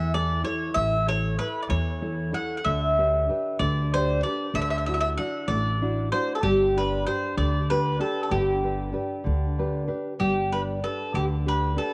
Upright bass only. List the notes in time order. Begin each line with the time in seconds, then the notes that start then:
Already playing: E2
0.76 A1
1.70 E2
2.66 D2
3.60 D2
4.54 D2
5.48 A1
6.43 G1
7.37 D2
8.31 G1
9.26 D2
10.21 G1
11.14 D2